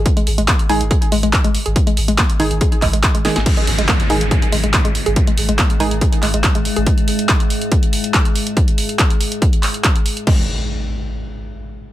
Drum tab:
CC |----------------|----------------|x---------------|----------------|
HH |xxoxxxoxxxoxxxox|xxoxxxoxxxoxxxox|xxoxxxoxxxoxxxox|xxoxxxoxxxoxxxox|
CP |----x-------x---|----x-----x-x---|----x-------x---|----x-----x-x---|
SD |----------------|--------------oo|----------------|----------------|
BD |o---o---o---o---|o---o---o-o-o---|o---o---o---o---|o---o---o---o---|

CC |----------------|----------------|x---------------|
HH |xxoxxxoxxxoxxxox|xxoxxxoxxxoxxxox|----------------|
CP |----x-------x---|----x-----x-x---|----------------|
SD |----------------|----------------|----------------|
BD |o---o---o---o---|o---o---o---o---|o---------------|